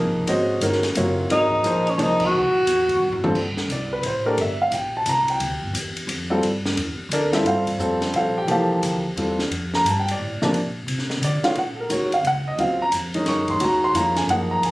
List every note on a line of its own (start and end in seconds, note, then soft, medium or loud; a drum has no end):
0.00 0.15 G#1 medium
0.00 0.25 F3 medium
0.00 0.26 A#3 medium
0.00 0.25 D#4 medium
0.00 0.26 G#4 medium
0.00 0.26 A#4 medium
0.16 0.26 F1 medium
0.27 0.60 G#1 medium
0.27 0.61 G#3 medium
0.27 0.61 C#4 medium
0.27 0.61 F#4 medium
0.27 0.61 C5 medium
0.27 0.61 D#5 medium
0.27 ride medium
0.61 0.94 G1 medium
0.61 0.82 D#3 medium
0.61 0.82 G#3 medium
0.61 0.82 C#4 medium
0.61 0.82 F#4 medium
0.61 0.82 A#4 medium
0.61 hi-hat pedal medium
0.61 ride medium
0.72 snare soft
0.83 snare soft
0.83 ride soft
0.95 1.29 F#1 medium
0.95 1.48 C3 medium
0.95 1.48 F#3 medium
0.95 1.48 F4 medium
0.95 1.30 A#4 medium
0.95 1.48 C#5 medium
0.95 hi-hat pedal medium
0.95 ride medium
1.30 1.63 G#1 medium
1.30 1.63 D#3 medium
1.30 1.63 G#3 medium
1.30 1.63 C#4 medium
1.30 1.91 D#4 loud
1.30 1.63 F#4 medium
1.30 1.64 A#4 medium
1.30 ride medium
1.52 kick medium
1.63 1.97 A#1 medium
1.63 1.85 F3 medium
1.63 1.84 A#3 medium
1.63 1.84 D#4 medium
1.63 1.85 G#4 medium
1.63 1.85 C5 medium
1.63 hi-hat pedal medium
1.63 ride medium
1.87 2.00 C#4 medium
1.87 ride soft
1.97 2.30 C2 medium
1.97 2.32 F3 medium
1.97 2.32 A#3 medium
1.97 2.05 D4 medium
1.97 2.32 D#4 medium
1.97 2.33 G#4 medium
1.97 2.33 C5 medium
1.97 ride medium
2.03 2.27 D#4 medium
2.20 kick medium
2.20 crash medium
2.26 3.26 F#4 loud
2.31 2.44 D2 medium
2.43 2.54 C2 medium
2.55 2.65 A1 medium
2.66 3.00 E2 medium
2.66 hi-hat pedal medium
2.66 ride medium
2.89 kick medium
2.89 ride medium
3.00 3.34 F#2 medium
3.12 floor tom medium
3.24 3.34 D3 medium
3.24 3.34 G3 medium
3.24 3.34 C4 medium
3.24 3.35 F4 medium
3.24 3.35 A4 medium
3.24 mid tom medium
3.35 3.67 G2 medium
3.35 kick medium
3.35 crash medium
3.57 snare medium
3.68 4.02 C2 medium
3.68 hi-hat pedal soft
3.68 ride medium
3.72 3.92 D5 medium
3.93 4.04 B4 medium
4.03 4.36 A1 medium
4.03 4.26 C5 medium
4.03 ride medium
4.26 4.37 A3 medium
4.26 4.37 D4 medium
4.26 4.37 G4 medium
4.26 4.37 A#4 medium
4.26 4.39 D5 medium
4.37 4.70 G1 medium
4.37 4.61 E5 medium
4.37 ride medium
4.62 4.73 F5 medium
4.71 5.05 A#1 medium
4.71 4.95 G5 medium
4.71 hi-hat pedal medium
4.71 ride medium
4.97 5.07 A5 medium
5.06 5.39 C2 medium
5.06 5.29 A#5 medium
5.06 hi-hat pedal medium
5.06 ride medium
5.28 5.72 G5 medium
5.28 ride soft
5.40 5.52 D2 medium
5.40 ride medium
5.51 5.61 A#1 medium
5.62 5.73 G1 medium
5.73 6.06 E2 medium
5.73 hi-hat pedal medium
5.73 ride medium
5.97 ride soft
6.07 6.40 F2 medium
6.07 ride medium
6.30 6.41 G3 medium
6.30 6.42 C4 medium
6.30 6.42 F4 medium
6.30 6.42 A4 medium
6.41 6.75 G2 medium
6.41 ride medium
6.66 snare medium
6.76 6.97 E2 medium
6.76 ride medium
6.98 muted upright bass stroke soft
7.09 7.43 D2 medium
7.09 7.34 D5 medium
7.09 hi-hat pedal medium
7.09 ride medium
7.13 7.34 D4 medium
7.13 7.32 A4 medium
7.13 7.34 A#4 medium
7.33 7.44 G3 medium
7.33 7.43 C4 medium
7.33 7.46 E4 medium
7.33 7.44 F4 medium
7.33 7.44 A4 medium
7.33 7.46 E5 medium
7.33 snare medium
7.33 ride soft
7.43 7.77 G2 medium
7.43 7.65 G3 medium
7.43 7.65 C4 medium
7.43 7.65 F4 medium
7.43 7.66 A4 medium
7.43 7.99 F5 medium
7.43 ride medium
7.48 7.99 C5 medium
7.67 kick medium
7.67 ride medium
7.78 8.12 F2 medium
7.78 8.31 G3 medium
7.78 8.31 C4 medium
7.78 8.15 F4 medium
7.78 8.15 A4 medium
7.78 hi-hat pedal medium
8.02 snare medium
8.02 ride soft
8.13 8.46 A#1 loud
8.13 8.36 F5 medium
8.13 ride medium
8.17 8.37 F4 medium
8.17 8.37 A4 medium
8.17 8.37 C5 medium
8.38 8.47 G4 medium
8.38 8.49 G5 medium
8.47 8.81 C2 medium
8.47 9.00 E3 medium
8.47 9.00 F3 medium
8.47 9.00 A#3 medium
8.47 9.00 G4 medium
8.47 ride medium
8.51 9.02 A4 medium
8.51 9.02 C5 medium
8.51 9.02 F5 medium
8.51 9.02 A5 medium
8.82 9.15 D2 medium
8.82 hi-hat pedal medium
8.82 ride medium
9.16 9.49 E2 medium
9.16 9.37 G3 medium
9.16 9.37 C4 medium
9.16 9.37 F4 medium
9.16 9.37 A4 medium
9.16 ride medium
9.39 snare medium
9.50 9.84 F2 medium
9.50 ride medium
9.74 9.86 A#5 loud
9.74 snare medium
9.84 10.18 G2 medium
9.84 9.98 A5 medium
9.84 hi-hat pedal medium
9.84 ride medium
10.00 10.09 G5 medium
10.08 10.59 D5 medium
10.08 ride medium
10.19 10.39 A2 loud
10.40 10.52 C3 medium
10.40 10.53 F3 medium
10.40 10.52 A#3 medium
10.40 10.53 D4 loud
10.40 muted upright bass stroke soft
10.40 snare medium
10.52 10.86 A#2 medium
10.52 ride medium
10.87 11.20 C3 medium
10.87 ride medium
10.99 snare soft
11.10 snare soft
11.21 11.42 D3 loud
11.21 11.44 D5 medium
11.21 hi-hat pedal medium
11.21 ride medium
11.43 11.54 D#3 medium
11.43 11.54 G#3 medium
11.43 11.55 C#4 medium
11.43 11.55 F4 loud
11.43 11.56 F5 medium
11.43 muted upright bass stroke soft
11.43 snare medium
11.43 ride soft
11.55 11.89 A#2 medium
11.55 11.78 F#5 medium
11.55 ride medium
11.75 11.77 A4 soft
11.80 11.91 A#4 medium
11.89 12.22 D#2 medium
11.89 12.10 D#3 medium
11.89 12.10 G#3 medium
11.89 12.10 C#4 medium
11.89 12.10 F#4 medium
11.89 12.13 C#5 medium
11.89 hi-hat pedal medium
11.89 ride medium
12.12 12.25 F5 medium
12.12 ride soft
12.23 12.57 C#2 medium
12.23 ride medium
12.27 12.47 F#5 loud
12.48 12.59 D#5 medium
12.57 12.91 D#2 medium
12.57 12.78 C#3 medium
12.57 12.78 F#3 medium
12.57 12.78 C4 medium
12.57 12.79 F4 medium
12.57 12.81 F5 medium
12.57 ride medium
12.82 12.89 A#5 loud
12.92 13.25 F2 medium
12.92 hi-hat pedal medium
12.92 ride medium
13.14 13.58 D#3 medium
13.14 13.58 G#3 medium
13.14 13.58 C#4 medium
13.14 13.59 D#4 medium
13.14 ride soft
13.26 13.59 F#2 medium
13.26 13.49 C#6 medium
13.26 snare soft
13.26 ride medium
13.48 13.61 C6 medium
13.48 kick medium
13.48 ride soft
13.59 13.93 D#2 medium
13.59 13.93 D#3 medium
13.59 13.93 G#3 medium
13.59 13.93 C#4 medium
13.59 13.94 F#4 medium
13.59 ride medium
13.64 13.84 A#5 medium
13.84 13.95 C6 loud
13.93 14.26 F2 medium
13.93 14.15 D#3 medium
13.93 14.15 G#3 medium
13.93 14.15 C#4 medium
13.93 14.15 F4 medium
13.93 14.17 A#5 loud
13.93 hi-hat pedal medium
13.93 ride medium
14.16 14.29 G#5 medium
14.16 snare soft
14.16 ride soft
14.27 14.61 F#2 medium
14.27 14.71 F3 medium
14.27 14.71 A#3 medium
14.27 14.71 D#4 medium
14.27 14.71 G#4 medium
14.27 14.51 F#5 medium
14.27 ride medium
14.51 14.63 A#5 loud
14.62 14.71 D#2 medium
14.62 14.71 G#5 medium
14.62 ride medium